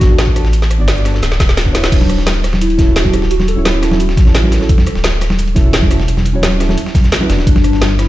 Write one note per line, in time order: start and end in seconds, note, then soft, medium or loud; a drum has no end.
0.00 0.81 A1 medium
0.00 0.08 D4 medium
0.00 0.32 F#4 loud
0.00 0.08 F#4 medium
0.00 0.09 A4 loud
0.00 kick loud
0.00 snare soft
0.00 closed hi-hat medium
0.00 shaker medium
0.09 0.33 B3 medium
0.09 0.34 D4 medium
0.09 0.34 F#4 medium
0.09 0.35 A4 medium
0.18 snare loud
0.18 closed hi-hat medium
0.27 kick medium
0.35 0.43 B3 medium
0.35 0.43 D4 medium
0.35 0.44 F#4 medium
0.35 0.44 A4 loud
0.35 cross-stick soft
0.35 closed hi-hat medium
0.35 shaker medium
0.45 snare medium
0.53 closed hi-hat medium
0.62 snare soft
0.70 cross-stick soft
0.70 closed hi-hat medium
0.70 shaker medium
0.78 1.21 G1 medium
0.78 1.03 B3 medium
0.78 1.03 D4 medium
0.78 1.03 F#4 medium
0.78 1.04 D5 medium
0.88 snare loud
0.88 closed hi-hat loud
0.97 shaker soft
1.04 1.12 B3 medium
1.04 1.12 D4 medium
1.04 1.13 F#4 medium
1.04 1.13 A4 medium
1.04 cross-stick soft
1.04 snare soft
1.04 closed hi-hat medium
1.04 shaker medium
1.13 1.20 B3 medium
1.13 1.21 D4 medium
1.13 1.21 F#4 medium
1.13 1.22 A4 medium
1.13 snare soft
1.23 1.73 D1 loud
1.23 snare medium
1.23 closed hi-hat medium
1.32 snare soft
1.32 snare medium
1.40 kick loud
1.40 snare medium
1.40 closed hi-hat medium
1.40 shaker medium
1.49 snare soft
1.49 snare medium
1.49 shaker soft
1.57 snare medium
1.57 snare loud
1.57 closed hi-hat loud
1.57 closed hi-hat medium
1.65 1.72 B3 medium
1.65 1.72 D4 medium
1.65 1.73 F#4 medium
1.65 1.73 B4 loud
1.65 kick medium
1.72 1.90 D1 medium
1.72 2.76 E4 medium
1.72 2.77 F#4 medium
1.72 2.75 C#5 loud
1.72 snare medium
1.72 snare loud
1.72 closed hi-hat medium
1.72 shaker medium
1.77 2.78 B4 loud
1.84 snare medium
1.84 snare loud
1.84 closed hi-hat medium
1.92 3.56 D1 loud
1.92 2.40 D4 medium
1.92 kick loud
1.92 closed hi-hat medium
1.92 closed hi-hat loud
1.92 crash medium
2.01 snare soft
2.01 high conga medium
2.09 cross-stick soft
2.09 closed hi-hat medium
2.09 shaker medium
2.18 snare soft
2.27 snare loud
2.27 closed hi-hat medium
2.27 high conga medium
2.44 cross-stick soft
2.44 snare medium
2.44 closed hi-hat medium
2.44 shaker medium
2.53 snare medium
2.53 high conga medium
2.61 2.98 E4 loud
2.61 closed hi-hat medium
2.61 closed hi-hat loud
2.70 closed hi-hat soft
2.77 2.85 C#4 medium
2.77 2.85 E4 medium
2.77 2.86 F#4 medium
2.77 2.86 A4 medium
2.77 kick loud
2.77 snare soft
2.77 closed hi-hat medium
2.77 high conga medium
2.77 shaker medium
2.86 3.11 C#4 medium
2.86 3.11 E4 medium
2.86 3.12 F#4 medium
2.86 3.12 A4 medium
2.96 3.15 F#4 loud
2.96 snare loud
2.96 closed hi-hat medium
2.96 closed hi-hat loud
3.05 kick medium
3.05 high conga medium
3.12 3.20 C#4 medium
3.12 3.20 E4 medium
3.12 3.21 F#4 medium
3.12 3.30 G4 loud
3.12 3.21 A4 medium
3.12 cross-stick soft
3.12 closed hi-hat medium
3.12 shaker medium
3.22 snare medium
3.31 3.47 F#4 loud
3.31 closed hi-hat medium
3.40 snare soft
3.40 high conga medium
3.48 3.67 A4 loud
3.48 closed hi-hat medium
3.48 shaker medium
3.56 4.16 D1 medium
3.56 3.80 C#4 medium
3.56 3.80 E4 medium
3.56 3.81 F#4 medium
3.56 3.81 C#5 medium
3.65 4.01 E4 loud
3.65 snare loud
3.65 closed hi-hat medium
3.65 high conga medium
3.81 3.89 C#4 medium
3.81 3.90 E4 medium
3.81 3.90 F#4 medium
3.81 3.91 A4 medium
3.81 cross-stick soft
3.81 snare soft
3.81 closed hi-hat medium
3.81 shaker medium
3.90 3.98 C#4 medium
3.90 3.98 E4 medium
3.90 3.99 F#4 medium
3.90 3.99 A4 medium
3.90 snare soft
3.90 high conga loud
4.00 4.53 F#4 loud
4.00 closed hi-hat medium
4.09 snare soft
4.17 4.60 A1 loud
4.17 kick loud
4.17 snare medium
4.17 closed hi-hat medium
4.17 high conga medium
4.17 shaker medium
4.25 4.32 C#4 medium
4.25 4.33 E4 medium
4.25 4.33 F#4 medium
4.25 4.33 A4 medium
4.25 snare soft
4.33 4.58 C#4 medium
4.33 4.59 E4 medium
4.33 4.59 F#4 medium
4.33 4.60 B4 loud
4.33 snare loud
4.33 closed hi-hat medium
4.33 closed hi-hat loud
4.44 high conga medium
4.52 5.21 A4 loud
4.52 snare medium
4.52 closed hi-hat medium
4.52 shaker medium
4.59 4.67 C#4 medium
4.59 4.68 E4 medium
4.59 4.68 F#4 medium
4.59 4.68 A4 loud
4.59 snare soft
4.69 kick loud
4.69 closed hi-hat loud
4.69 closed hi-hat medium
4.78 snare medium
4.78 high conga loud
4.87 cross-stick soft
4.87 closed hi-hat medium
4.87 shaker medium
4.95 5.55 D1 medium
4.95 snare soft
5.04 snare loud
5.04 closed hi-hat medium
5.04 closed hi-hat loud
5.04 high conga medium
5.21 cross-stick soft
5.21 snare medium
5.21 closed hi-hat medium
5.21 shaker medium
5.30 snare medium
5.30 high conga medium
5.39 closed hi-hat medium
5.48 closed hi-hat soft
5.55 6.36 E1 medium
5.55 5.62 C#4 medium
5.55 5.63 E4 medium
5.55 5.63 F#4 medium
5.55 5.63 A4 loud
5.55 kick loud
5.55 snare soft
5.55 closed hi-hat medium
5.55 high conga medium
5.55 shaker medium
5.63 5.88 C#4 medium
5.63 5.88 E4 medium
5.63 5.89 F#4 medium
5.63 5.89 A4 loud
5.73 snare loud
5.73 closed hi-hat medium
5.82 kick medium
5.82 high conga medium
5.89 5.97 C#4 medium
5.89 5.98 E4 medium
5.89 5.98 F#4 medium
5.89 5.99 A4 medium
5.89 cross-stick soft
5.89 closed hi-hat medium
5.89 shaker medium
6.00 snare medium
6.08 closed hi-hat medium
6.17 snare soft
6.17 high conga medium
6.26 closed hi-hat medium
6.26 shaker medium
6.33 6.76 D1 medium
6.33 6.57 C#4 medium
6.33 6.58 E4 medium
6.33 6.58 F#4 medium
6.33 6.59 C#5 medium
6.42 snare loud
6.42 closed hi-hat medium
6.42 high conga medium
6.59 6.66 C#4 medium
6.59 6.67 E4 medium
6.59 6.68 F#4 medium
6.59 6.68 A4 medium
6.59 cross-stick soft
6.59 snare soft
6.59 closed hi-hat medium
6.59 shaker medium
6.68 6.75 C#4 medium
6.68 6.76 E4 medium
6.68 6.76 F#4 medium
6.68 6.77 A4 medium
6.68 snare soft
6.68 high conga loud
6.78 closed hi-hat medium
6.86 snare soft
6.95 kick loud
6.95 snare medium
6.95 closed hi-hat medium
6.95 high conga medium
6.95 shaker medium
7.04 snare soft
7.04 shaker soft
7.12 snare loud
7.12 closed hi-hat medium
7.20 7.27 C#4 medium
7.20 7.27 E4 medium
7.20 7.28 F#4 medium
7.20 7.28 B4 medium
7.20 high conga medium
7.27 7.38 F#1 medium
7.27 8.08 B3 loud
7.27 8.08 D4 medium
7.27 8.08 F#4 medium
7.27 snare medium
7.27 closed hi-hat medium
7.27 shaker medium
7.32 8.08 B4 loud
7.38 7.46 D1 loud
7.38 snare soft
7.47 8.08 G1 loud
7.47 7.95 D4 loud
7.47 kick loud
7.47 closed hi-hat medium
7.55 snare soft
7.55 high conga medium
7.64 cross-stick soft
7.64 closed hi-hat medium
7.64 shaker medium
7.73 snare soft
7.81 snare loud
7.81 closed hi-hat medium
7.81 high conga medium
7.99 8.08 E4 loud
7.99 cross-stick soft
7.99 snare soft
7.99 closed hi-hat medium
7.99 shaker medium